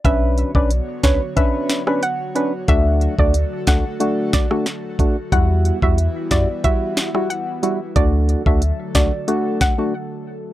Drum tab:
HH |x-x-x-x-x-x-x-x-|x-x-x-x-x-x-x-x-|x-x-x-x-x-x-x-x-|x-x-x-x-x-x-----|
SD |------o---or----|------o---oro---|------o---or----|------o---o-----|
BD |o--o--o-o-------|o--o--o---o---o-|o--o--o-o-------|o--o--o---o-----|